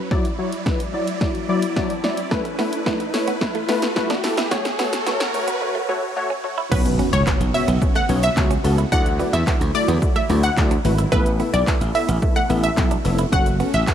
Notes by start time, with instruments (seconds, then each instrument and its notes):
Already playing: riser
0.11 synth keys F#3 E4 D5, supersaw synth F#3 E4 D5, kick, snare
0.25 closed hi-hat
0.39 synth keys F#3 E4 C#5
0.53 closed hi-hat
0.66 synth keys F#3 E4 B4, kick, snare
0.80 closed hi-hat
0.94 synth keys F#3 E4 D5
1.08 closed hi-hat
1.21 synth keys F#3 E4 D5, kick, snare
1.35 closed hi-hat
1.49 synth keys F#3 E4 D5
1.62 closed hi-hat
1.76 synth keys F#3 E4 D5 A5, kick, snare
1.90 closed hi-hat
2.04 synth keys F#3 E4 D5 E5, snare
2.17 closed hi-hat
2.31 supersaw synth A3 B4, synth keys A3 E4 B4, clean electric guitar A3, kick, snare
2.45 muted clean electric guitar stroke, closed hi-hat
2.59 synth keys A3 E4 B4, clean electric guitar B3, snare, open hi-hat
2.73 closed hi-hat
2.86 synth keys A3 E4 B4, clean electric guitar B3, kick, snare
3.00 muted clean electric guitar stroke, closed hi-hat
3.14 synth keys A3 E4 C#5, snare, open hi-hat
3.28 clean electric guitar B3, closed hi-hat
3.41 synth keys A3 E4 B4, muted clean electric guitar stroke, kick, snare
3.55 clean electric guitar A3, closed hi-hat
3.69 synth keys A3 E4 B4, clean electric guitar B3, snare, open hi-hat
3.82 snare, closed hi-hat
3.96 synth keys A3 E4 B4, kick, snare
4.10 clean electric guitar D4, snare, closed hi-hat
4.24 synth keys A3 E4 A4, muted clean electric guitar stroke, snare, open hi-hat
4.37 clean electric guitar E4, snare, closed hi-hat
4.51 synth keys A3 F#4 C#5, clean electric guitar F#4, supersaw synth F#4 C#5, kick, snare, shaker
4.65 muted clean electric guitar stroke, snare, closed hi-hat, shaker
4.79 synth keys A3 F#4 C#5, clean electric guitar B3, snare, open hi-hat, shaker
4.93 snare, closed hi-hat, shaker
5.07 synth keys A3 F#4 C#5, clean electric guitar B3, snare, shaker
5.20 muted clean electric guitar stroke, snare, closed hi-hat, shaker
5.34 synth keys A3 F#4 C#5, open hi-hat, shaker
5.48 clean electric guitar B3, closed hi-hat, shaker
5.61 synth keys A3 F#4 C#5, muted clean electric guitar stroke
5.75 clean electric guitar A3
5.89 synth keys A3 F#4 C#5, clean electric guitar B3
6.16 synth keys A3 F#4 C#5
6.30 clean electric guitar C#4
6.44 synth keys A3 F#4 C#5, muted clean electric guitar stroke
6.58 clean electric guitar E4
6.71 slap bass B1, supersaw synth C#3 B3 F#4, synth keys B3 C#4 F#4 C#5, clean electric guitar B3, synth pluck B4, kick, crash, impact, shaker
6.85 muted clean electric guitar stroke, closed hi-hat, shaker
6.99 synth keys B3 C#4 F#4 B4, clean electric guitar C#4, open hi-hat, shaker
7.13 slap bass C#2, synth pluck C#5, closed hi-hat, shaker
7.27 clean electric guitar B3, synth keys B3 C#4 F#4 C#5, kick, clap, shaker
7.40 slap bass B1, muted clean electric guitar stroke, closed hi-hat, shaker
7.54 synth keys B3 C#4 F#4 C#5, synth pluck E5, open hi-hat, shaker
7.68 slap bass B1, clean electric guitar B3, closed hi-hat, shaker
7.81 synth keys B3 C#4 F#4 C#5, muted clean electric guitar stroke, kick, shaker
7.95 clean electric guitar A3, synth pluck F#5, closed hi-hat, shaker
8.09 slap bass B1, synth keys B3 C#4 F#4 C#5, clean electric guitar B3, open hi-hat, shaker
8.23 synth pluck E5, closed hi-hat, shaker
8.37 slap bass C#2, synth keys B3 C#4 F#4 C#5, kick, clap, shaker
8.51 clean electric guitar C#4, closed hi-hat, shaker
8.64 slap bass C#2, synth keys B3 C#4 F#4 A4, muted clean electric guitar stroke, open hi-hat, shaker
8.78 clean electric guitar E4, closed hi-hat, shaker
8.92 slap bass D2, supersaw synth D3 F#3 E4, synth keys A3 E4 F#4 D5, clean electric guitar D4, synth pluck F#5, kick, shaker
9.06 muted clean electric guitar stroke, closed hi-hat, shaker
9.19 synth keys A3 E4 F#4 D5, clean electric guitar B3, open hi-hat, shaker
9.33 slap bass E2, synth pluck E5, closed hi-hat, shaker
9.47 synth keys A3 E4 F#4 D5, clean electric guitar B3, kick, clap, shaker
9.61 slap bass D2, muted clean electric guitar stroke, closed hi-hat, shaker
9.75 synth keys A3 E4 F#4 D5, synth pluck D5, open hi-hat, shaker
9.88 slap bass E2, clean electric guitar B3, closed hi-hat, shaker
10.02 synth keys A3 E4 F#4 D5, muted clean electric guitar stroke, kick, shaker
10.16 clean electric guitar A3, synth pluck E5, closed hi-hat, shaker
10.30 slap bass D2, synth keys A3 E4 F#4 D5, clean electric guitar B3, open hi-hat, shaker
10.43 synth pluck F#5, closed hi-hat, shaker
10.57 slap bass D2, synth keys A3 E4 F#4 D5, kick, clap, shaker
10.71 clean electric guitar D4, closed hi-hat, shaker
10.85 slap bass G#1, synth keys A3 E4 F#4 B4, muted clean electric guitar stroke, open hi-hat, shaker
10.98 clean electric guitar E4, closed hi-hat, shaker
11.12 slap bass A1, supersaw synth B2 A3 E4, clean electric guitar A3, synth keys B3 E4 A4 E5, synth pluck B4, kick, shaker
11.26 muted clean electric guitar stroke, closed hi-hat, shaker
11.40 synth keys B3 E4 A4 E5, clean electric guitar B3, open hi-hat, shaker
11.54 slap bass B1, synth pluck D5, closed hi-hat, shaker
11.67 synth keys B3 E4 A4 E5, clean electric guitar B3, kick, clap, shaker
11.81 slap bass A1, muted clean electric guitar stroke, closed hi-hat, shaker
11.95 synth keys B3 E4 A4 E5, synth pluck E5, open hi-hat, shaker
12.09 slap bass A1, clean electric guitar B3, closed hi-hat, shaker
12.22 synth keys B3 E4 A4 E5, muted clean electric guitar stroke, kick, shaker
12.36 clean electric guitar A3, synth pluck F#5, closed hi-hat, shaker
12.50 slap bass A1, synth keys B3 E4 A4 E5, clean electric guitar B3, open hi-hat, shaker
12.63 synth pluck E5, closed hi-hat, shaker
12.77 slap bass B1, synth keys B3 E4 A4 E5, kick, clap, shaker
12.91 clean electric guitar D4, closed hi-hat, shaker
13.05 slap bass F1, synth keys B3 E4 A4 E5, muted clean electric guitar stroke, open hi-hat, shaker
13.19 clean electric guitar E4, closed hi-hat, shaker
13.32 slap bass F#1, supersaw synth C#3 F#4, synth keys C#4 F#4 A4 F#5, clean electric guitar F#4, synth pluck F#5, kick, shaker
13.46 muted clean electric guitar stroke, closed hi-hat, shaker
13.60 clean electric guitar B3, synth keys C#4 F#4 A4 F#5, open hi-hat, shaker
13.74 slap bass A1, synth pluck E5, closed hi-hat, shaker
13.87 clean electric guitar B3, synth keys C#4 F#4 A4 F#5, kick, clap, shaker